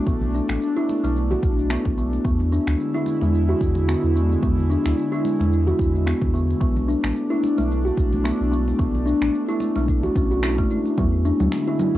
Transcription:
Already playing: A3 D4
0.07 B1 B3, kick, cabasa
0.21 low conga, cabasa
0.34 D4, cabasa
0.48 A1, finger snap, muted conga, high conga, cabasa
0.62 cabasa
0.77 E4, cabasa
0.89 muted conga, cabasa
1.04 B1 A3, muted conga, high conga, cabasa
1.16 cabasa
1.31 F#4, low conga, cabasa
1.43 B1, kick, cabasa
1.59 cabasa
1.70 B3, finger snap, cabasa
1.85 B1, kick, low conga, cabasa
1.98 B3, high conga, cabasa
2.13 muted conga, cabasa
2.25 E2 D3 G#3 B3 E4, kick, cabasa
2.40 low conga, cabasa
2.52 D4, cabasa
2.67 D2, finger snap, muted conga, high conga, cabasa
2.80 cabasa
2.94 E4, cabasa
3.06 muted conga, cabasa
3.21 E2 G#3, muted conga, cabasa
3.35 cabasa
3.49 F#4, cabasa
3.61 E2, kick, cabasa
3.75 muted conga, low conga, cabasa
3.88 B3, finger snap, cabasa
4.04 E2, cabasa
4.16 B3, high conga, cabasa
4.30 high conga, cabasa
4.43 E2 B3, kick, cabasa
4.58 low conga, cabasa
4.70 D4, cabasa
4.84 D2, finger snap, muted conga, high conga, cabasa
4.98 cabasa
5.12 E4, cabasa
5.25 muted conga, cabasa
5.40 E2 G#3, muted conga, high conga, cabasa
5.53 cabasa
5.67 F#4, low conga, cabasa
5.79 E2, kick, cabasa
5.95 cabasa
6.06 B3, finger snap, cabasa
6.21 E2, kick, low conga, cabasa
6.33 B3, high conga, cabasa
6.50 muted conga, cabasa
6.60 B1 A3 B3 D4, kick, cabasa
6.76 low conga, cabasa
6.88 D4, cabasa
7.03 A1, finger snap, muted conga, high conga, cabasa
7.16 cabasa
7.30 E4, cabasa
7.43 muted conga, cabasa
7.58 B1 A3, muted conga, cabasa
7.71 cabasa
7.85 F#4, cabasa
7.97 B1, kick, cabasa
8.13 muted conga, low conga, cabasa
8.24 B3, finger snap, cabasa
8.40 B1, cabasa
8.52 B3, high conga, cabasa
8.68 high conga, cabasa
8.79 B1 B3, kick, cabasa
8.95 low conga, cabasa
9.06 D4, cabasa
9.21 A1, finger snap, muted conga, high conga, cabasa
9.35 cabasa
9.49 E4, cabasa
9.60 muted conga, cabasa
9.76 B1 A3, muted conga, high conga, cabasa
9.88 kick, cabasa
10.03 F#4, low conga, cabasa
10.16 B1 C#4, kick, cabasa
10.31 F#4, cabasa
10.43 E4, finger snap, cabasa
10.58 F#1 A3, kick, low conga, cabasa
10.70 E4, high conga, cabasa
10.85 muted conga, cabasa
10.98 E2 D3 G#3 B3 E4, kick, low conga, cabasa
11.25 D4, cabasa
11.40 D2, low conga, cabasa
11.52 finger snap, cabasa
11.68 E4
11.79 low conga, cabasa
11.94 E2

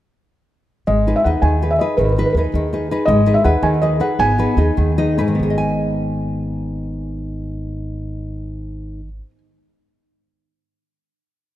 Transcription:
0.87 G#1 G#3 D#5
1.07 D#4 G#4 B4
1.16 E5
1.24 D#2 D#4 G#4 B4 F#5
1.42 D#2 D#3 G#5
1.62 D#4 G#4 B4
1.71 E5
1.79 D#4 G#4 B4 D#5
1.97 G#1 D#3 B4
2.05 B4
2.12 B4
2.18 D#4 G#4 B4
2.26 B4
2.32 D#2 B4
2.37 D#4 G#4 B4
2.54 D#2 D#3
2.73 D#4 G#4 B4
2.91 D#4 G#4 B4
3.05 G#1 G#3 D#5
3.26 D#4 G#4 B4
3.34 E5
3.44 D#2 D#4 G#4 B4 F#5
3.63 D#2 D#3 G#5
3.82 D#4 G#4 B4 D#5
4.00 D#4 G#4 B4 F#5
4.19 G#1 B3 G#5
4.38 D#4 G#4 B4
4.57 D#2 D#4 G#4 B4
4.77 D#2 D#3
4.98 D#4 G#4 B4 D#5
5.18 G#2 D#4 G#4 B4
5.28 D#3
5.35 B3
5.39 G#1 G#4
5.50 D#5
5.58 G#5

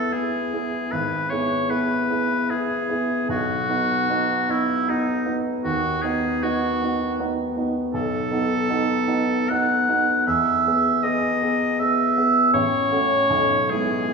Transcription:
Already playing: E2 B3 E4 G#4 A4
0.12 B3 E4 G#4
0.53 B3 E4 G#4
0.92 G#1 B4
1.30 B3 E4 G#4 C#5
1.70 B3 E4 G#4 B4
2.10 B3 E4 G#4
2.50 B3 E4 G#4
2.90 B3 E4 G#4
3.29 B1 F#4
3.69 B3 D#4 F#4
4.09 B3 D#4 F#4
4.49 B3 D#4 E4 F#4
4.88 B3 D#4 F#4
5.26 B3 D#4 F#4
5.64 D#2 F#4
6.02 B3 D#4 F#4 G#4
6.43 B3 D#4 F#4
6.82 B3 D#4 F#4
7.20 B3 D#4 F#4
7.57 B3 D#4 F#4
7.94 B1 A4
8.31 B3 D#4 F#4
8.69 B3 D#4 F#4
9.08 B3 D#4 F#4
9.50 B3 D#4 F#4 F#5
9.88 B3 D#4 F#4
10.27 E2 E5
10.67 B3 G#4
11.03 B3 G#4 D#5
11.43 B3 G#4
11.79 B3 G#4 E5
12.17 B3 G#4
12.54 A1 C#5
12.92 A3 C#4 F#4
13.30 B1
13.70 G#3 B3 E4 G#4

